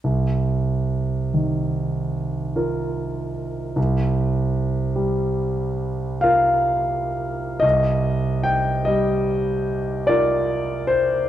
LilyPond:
\new Staff \with { instrumentName = "Grand piano" } { \time 9/8 \key c \minor \tempo 4. = 49 << { r1 r8 | r2. f''4. | ees''4 g''8 ees''4. d''4 c''8 | } \\ { c,4. ees4. <f' bes'>4. | c,4. g4. <f' bes'>4. | c,4. g4. <f' bes'>4. | } >> }